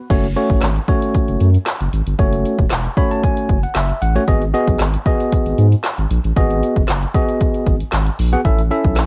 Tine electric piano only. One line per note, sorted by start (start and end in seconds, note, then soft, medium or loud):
0.10 0.26 A3 medium
0.10 0.26 C#4 medium
0.10 0.26 F#4 medium
0.10 0.26 C#5 loud
0.36 0.66 A3 medium
0.36 0.66 C#4 medium
0.36 0.66 F#4 medium
0.36 0.67 C#5 medium
0.88 1.48 A3 medium
0.88 1.48 C#4 medium
0.88 1.49 F#4 medium
0.88 1.49 C#5 loud
2.19 2.64 A3 medium
2.19 2.64 C#4 medium
2.19 2.64 F#4 medium
2.19 2.64 C#5 medium
2.97 3.57 A3 medium
2.97 3.57 C#4 medium
2.97 3.57 F#4 medium
2.97 3.57 C#5 loud
2.97 3.10 B5 medium
3.11 3.23 A5 medium
3.23 3.60 G#5 medium
3.63 3.75 F#5 medium
3.76 4.00 E5 medium
4.02 4.26 F#5 medium
4.15 4.22 A3 medium
4.15 4.22 C#4 medium
4.15 4.23 F#4 medium
4.15 4.23 C#5 loud
4.27 4.43 B3 medium
4.27 4.43 F#4 medium
4.27 4.43 G#4 medium
4.27 4.43 D#5 loud
4.54 4.84 B3 medium
4.54 4.84 F#4 medium
4.54 4.84 G#4 medium
4.54 4.84 D#5 medium
5.06 5.66 B3 medium
5.06 5.66 F#4 medium
5.06 5.66 G#4 medium
5.06 5.66 D#5 loud
6.36 6.81 B3 medium
6.36 6.81 F#4 medium
6.36 6.82 G#4 medium
6.36 6.82 D#5 loud
7.15 7.75 B3 medium
7.15 7.75 F#4 medium
7.15 7.75 G#4 medium
7.15 7.75 D#5 loud
8.33 8.40 B3 medium
8.33 8.40 F#4 medium
8.33 8.40 G#4 medium
8.33 8.40 F#5 loud
8.45 8.61 C#4 medium
8.45 8.61 E4 medium
8.45 8.61 A4 medium
8.45 8.61 E5 medium
8.71 9.01 C#4 medium
8.71 9.01 E4 medium
8.71 9.01 A4 medium
8.71 9.01 E5 loud